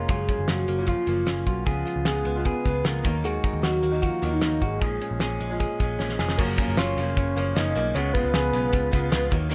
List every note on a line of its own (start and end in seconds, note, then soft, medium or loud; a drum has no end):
0.00 0.10 G#3 medium
0.00 0.14 G#3 medium
0.00 0.12 C#4 medium
0.00 0.29 C#4 medium
0.00 0.10 F4 medium
0.00 0.11 A#4 medium
0.09 0.25 F#1 medium
0.09 0.46 C#3 medium
0.09 0.49 F3 medium
0.09 1.67 F#3 medium
0.09 0.49 A#3 medium
0.09 0.51 C#4 medium
0.09 0.88 F4 medium
0.09 0.50 G#4 loud
0.09 kick loud
0.09 closed hi-hat medium
0.29 1.27 C#4 soft
0.29 kick medium
0.29 closed hi-hat medium
0.39 0.47 F#1 medium
0.48 0.65 F#1 medium
0.48 0.78 C#3 soft
0.48 0.78 F3 medium
0.48 0.77 A#3 medium
0.48 0.77 C#4 soft
0.48 0.87 F#4 medium
0.48 snare loud
0.48 closed hi-hat medium
0.68 0.92 F#1 medium
0.68 1.07 A#3 medium
0.68 closed hi-hat medium
0.78 1.09 F#2 soft
0.78 1.05 C#3 medium
0.78 1.06 F3 medium
0.78 1.07 A#3 medium
0.78 1.08 C#4 medium
0.87 1.49 F4 medium
0.87 1.45 F4 medium
0.87 kick medium
0.87 closed hi-hat medium
1.06 1.24 F#1 loud
1.06 1.24 C#3 soft
1.06 1.25 F3 medium
1.06 1.27 A#3 medium
1.06 1.71 A#3 medium
1.06 1.28 C#4 medium
1.06 closed hi-hat medium
1.26 1.43 F#1 medium
1.26 1.64 C#3 medium
1.26 1.66 F3 medium
1.26 1.67 A#3 medium
1.26 1.71 C#4 medium
1.26 1.68 C#4 medium
1.26 snare medium
1.26 closed hi-hat medium
1.47 1.63 B1 medium
1.47 1.66 F4 medium
1.47 1.67 F#4 medium
1.47 kick medium
1.47 closed hi-hat medium
1.65 1.83 C#2 medium
1.65 2.05 C#3 medium
1.65 3.08 C#3 medium
1.65 2.06 G#3 medium
1.65 2.06 B3 medium
1.65 2.08 F4 medium
1.65 2.07 F4 medium
1.65 2.05 G#4 medium
1.65 kick loud
1.65 closed hi-hat medium
1.86 2.84 F4 medium
1.86 closed hi-hat medium
1.96 2.04 C#2 medium
2.05 2.22 C#2 medium
2.05 2.36 C#3 medium
2.05 2.36 G#3 medium
2.05 2.36 B3 medium
2.05 2.45 G#4 medium
2.05 2.44 G#4 loud
2.05 snare medium
2.05 closed hi-hat medium
2.10 2.34 F4 medium
2.25 2.50 C#2 medium
2.25 2.64 B3 medium
2.25 closed hi-hat medium
2.35 2.63 C#3 soft
2.35 2.65 G#3 medium
2.35 2.65 B3 medium
2.35 2.65 F4 medium
2.45 3.09 G#4 medium
2.45 2.87 B4 loud
2.45 kick medium
2.45 closed hi-hat medium
2.65 2.82 C#2 medium
2.65 2.83 C#3 medium
2.65 2.84 G#3 medium
2.65 3.09 B3 soft
2.65 2.85 B3 medium
2.65 2.86 F4 medium
2.65 kick medium
2.65 closed hi-hat medium
2.84 3.01 C#2 medium
2.84 3.03 C#3 medium
2.84 3.04 G#3 medium
2.84 3.05 B3 medium
2.84 3.09 F4 medium
2.84 3.05 F4 medium
2.84 3.24 A#4 medium
2.84 snare medium
2.84 closed hi-hat medium
3.03 3.37 D#2 medium
3.03 3.61 D#3 medium
3.03 3.23 D#3 medium
3.03 3.62 F#3 medium
3.03 3.64 A#3 medium
3.03 3.64 D#4 medium
3.03 kick medium
3.03 closed hi-hat medium
3.24 4.82 D#3 medium
3.24 3.62 F#4 medium
3.24 3.65 G#4 medium
3.24 closed hi-hat medium
3.44 4.40 D#4 medium
3.44 kick medium
3.44 closed hi-hat medium
3.53 3.62 D#2 loud
3.62 3.80 D#2 medium
3.62 3.92 D#3 soft
3.62 3.92 F#3 medium
3.62 3.91 A#3 soft
3.62 3.90 D#4 medium
3.62 4.01 F#4 medium
3.62 4.02 F#4 medium
3.62 snare medium
3.62 closed hi-hat medium
3.83 4.08 D#2 medium
3.83 4.22 A#3 medium
3.83 closed hi-hat medium
3.91 4.21 D#3 soft
3.91 4.22 F#3 medium
3.91 4.22 A#3 medium
3.91 4.22 D#4 medium
4.02 4.34 F4 medium
4.02 4.61 F#4 medium
4.02 kick medium
4.02 closed hi-hat medium
4.22 4.39 D#2 loud
4.22 4.40 D#3 medium
4.22 4.42 F#3 medium
4.22 5.24 A#3 medium
4.22 4.43 A#3 medium
4.22 4.44 D#4 medium
4.22 closed hi-hat medium
4.33 4.64 D#4 medium
4.41 4.58 D#2 medium
4.41 4.81 D#3 medium
4.41 4.82 F#3 medium
4.41 4.83 A#3 medium
4.41 4.85 D#4 medium
4.41 4.83 D#4 medium
4.41 snare medium
4.41 closed hi-hat medium
4.62 4.78 G#1 medium
4.62 4.82 F#4 medium
4.62 5.21 G#4 medium
4.62 kick medium
4.62 closed hi-hat medium
4.81 4.98 A#1 medium
4.81 5.18 A#2 medium
4.81 6.39 A#2 medium
4.81 5.20 F3 medium
4.81 5.20 G#3 medium
4.81 5.22 C#4 medium
4.81 5.20 G#4 medium
4.81 kick loud
4.81 closed hi-hat medium
5.01 5.99 C#4 medium
5.01 closed hi-hat medium
5.11 5.19 A#1 medium
5.19 5.37 A#1 medium
5.19 5.50 A#2 medium
5.19 5.50 F3 medium
5.19 5.50 G#3 medium
5.19 5.49 C#4 medium
5.19 5.59 G#4 medium
5.19 snare loud
5.19 closed hi-hat medium
5.40 5.65 A#1 medium
5.40 5.79 G#3 medium
5.40 closed hi-hat medium
5.50 5.78 A#2 soft
5.50 5.79 F3 medium
5.50 5.80 G#3 medium
5.50 5.80 C#4 medium
5.60 6.18 G#4 medium
5.60 kick medium
5.60 closed hi-hat medium
5.80 5.96 A#1 medium
5.80 5.98 A#2 medium
5.80 5.99 F3 medium
5.80 6.43 G#3 medium
5.80 6.00 G#3 medium
5.80 6.01 C#4 medium
5.80 kick medium
5.80 closed hi-hat medium
5.99 6.16 A#1 medium
5.99 6.38 A#2 medium
5.99 6.39 F3 medium
5.99 6.40 G#3 medium
5.99 6.59 C#4 medium
5.99 6.40 C#4 medium
5.99 snare soft
6.09 snare soft
6.19 6.35 F1 medium
6.19 6.43 G#4 medium
6.19 snare medium
6.29 snare medium
6.38 6.55 F#1 loud
6.38 6.58 F#2 medium
6.38 6.57 C#3 medium
6.38 6.58 F3 medium
6.38 7.95 F#3 medium
6.38 6.59 A#3 medium
6.38 6.59 C#4 medium
6.38 6.79 A#4 medium
6.38 kick loud
6.38 crash medium
6.58 6.96 C#3 medium
6.58 6.98 F3 medium
6.58 6.99 A#3 medium
6.58 7.17 C#4 medium
6.58 7.00 C#4 medium
6.58 kick medium
6.58 closed hi-hat medium
6.68 6.76 F#1 medium
6.77 6.94 F#1 medium
6.77 7.99 F4 medium
6.77 7.16 C#5 medium
6.77 snare loud
6.77 closed hi-hat loud
6.97 7.13 F1 medium
6.97 7.35 C#3 medium
6.97 7.36 F3 medium
6.97 7.36 A#3 medium
6.97 7.37 A#3 medium
6.97 7.38 C#4 medium
6.97 closed hi-hat medium
7.17 7.33 F#1 loud
7.17 7.55 C#4 medium
7.17 7.57 C#5 loud
7.17 kick medium
7.17 closed hi-hat medium
7.36 7.52 F#1 loud
7.36 7.55 C#3 medium
7.36 7.56 F3 medium
7.36 7.74 A#3 medium
7.36 7.57 A#3 medium
7.36 7.57 C#4 medium
7.36 closed hi-hat medium
7.56 7.73 F#1 medium
7.56 7.74 C#3 medium
7.56 7.75 F3 medium
7.56 7.76 A#3 medium
7.56 7.99 C#4 medium
7.56 7.77 C#4 medium
7.56 7.94 D#5 loud
7.56 snare loud
7.56 closed hi-hat medium
7.75 7.92 B1 medium
7.75 7.93 C#3 medium
7.75 7.95 F3 medium
7.75 7.99 A#3 medium
7.75 7.96 A#3 medium
7.75 7.96 C#4 medium
7.75 closed hi-hat medium
7.94 8.11 C#2 loud
7.94 8.13 C#3 medium
7.94 9.36 C#3 medium
7.94 8.14 G#3 medium
7.94 8.15 B3 loud
7.94 8.15 F4 medium
7.94 8.13 C#5 loud
7.94 closed hi-hat medium
8.14 8.52 C#3 medium
8.14 8.53 G#3 medium
8.14 8.55 B3 medium
8.14 8.73 F4 medium
8.14 8.55 F4 medium
8.14 9.27 B4 loud
8.14 kick medium
8.14 closed hi-hat medium
8.24 8.32 C#2 loud
8.34 8.50 C#2 medium
8.34 9.36 G#4 medium
8.34 snare loud
8.34 closed hi-hat loud
8.53 8.70 B1 medium
8.53 8.90 C#3 medium
8.53 8.91 G#3 medium
8.53 8.91 B3 medium
8.53 8.93 B3 medium
8.53 8.94 F4 medium
8.53 closed hi-hat medium
8.73 8.89 C#2 loud
8.73 9.11 F4 medium
8.73 kick medium
8.73 closed hi-hat medium
8.91 9.09 C#2 loud
8.91 9.09 C#3 medium
8.91 9.11 G#3 medium
8.91 9.35 B3 medium
8.91 9.12 B3 medium
8.91 9.12 F4 medium
8.91 kick medium
8.91 closed hi-hat medium
9.10 9.28 C#2 loud
9.10 9.29 C#3 medium
9.10 9.30 G#3 medium
9.10 9.32 B3 medium
9.10 9.35 F4 medium
9.10 9.32 F4 medium
9.10 snare loud
9.10 closed hi-hat medium
9.29 9.55 D#2 loud
9.29 9.48 D#3 medium
9.29 9.50 D#3 medium
9.29 9.48 F#3 medium
9.29 9.49 A#3 medium
9.29 9.50 D#4 medium
9.29 kick loud
9.29 closed hi-hat medium
9.49 9.55 D#3 medium
9.49 9.55 F#3 medium
9.49 9.55 A#3 medium
9.49 9.55 D#4 loud
9.49 9.55 A#4 loud
9.49 closed hi-hat medium